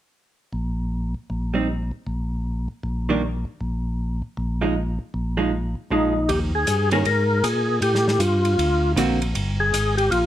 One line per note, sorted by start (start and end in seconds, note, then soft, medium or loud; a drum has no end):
0.53 1.15 A#1 medium
1.30 1.92 A#1 medium
1.54 1.66 G3 soft
1.54 1.67 C4 soft
1.54 1.67 D#4 soft
2.07 2.68 A#1 medium
2.83 3.45 A#1 medium
3.09 3.21 D#3 medium
3.09 3.21 G3 medium
3.09 3.21 A#3 medium
3.09 3.21 D4 medium
3.61 4.22 A#1 medium
4.37 4.99 A#1 medium
4.61 4.74 F3 medium
4.61 4.74 G#3 medium
4.61 4.74 D#4 medium
5.14 5.75 A#1 medium
5.37 5.50 F3 medium
5.37 5.50 G#3 medium
5.37 5.51 D#4 medium
5.91 6.52 A#1 medium
5.91 6.13 F3 soft
5.91 6.13 G#3 medium
5.91 6.13 D#4 soft
5.91 6.31 D#4 medium
6.29 6.66 D#2 medium
6.29 6.40 G4 medium
6.29 ride medium
6.55 6.90 G#4 medium
6.67 7.04 G2 medium
6.67 hi-hat pedal medium
6.67 ride medium
6.91 7.04 D#3 medium
6.91 7.04 A#3 medium
6.91 7.04 C#4 medium
6.91 7.04 G#4 medium
6.91 6.99 A#4 medium
6.91 ride soft
7.05 7.43 G#2 medium
7.05 7.45 A#4 medium
7.05 ride soft
7.44 7.81 A#2 medium
7.44 7.79 G#4 medium
7.44 hi-hat pedal soft
7.44 ride medium
7.81 8.19 A2 medium
7.81 8.22 G4 medium
7.81 ride medium
7.95 snare soft
8.08 snare soft
8.19 8.57 G2 medium
8.19 8.92 F4 medium
8.19 hi-hat pedal medium
8.19 ride medium
8.45 ride soft
8.58 8.95 D2 medium
8.58 ride medium
8.96 9.34 A#1 medium
8.96 9.19 D3 medium
8.96 9.19 A#3 medium
8.96 9.19 C4 medium
8.96 9.19 F#4 medium
8.96 hi-hat pedal soft
8.96 ride medium
9.22 ride soft
9.35 9.72 G1 medium
9.35 ride medium
9.60 9.95 G#4 medium
9.73 10.10 G#1 medium
9.73 hi-hat pedal medium
9.73 ride medium
9.97 10.10 G4 medium
9.97 ride soft
10.11 10.26 A#1 medium
10.11 10.26 F4 medium
10.11 ride medium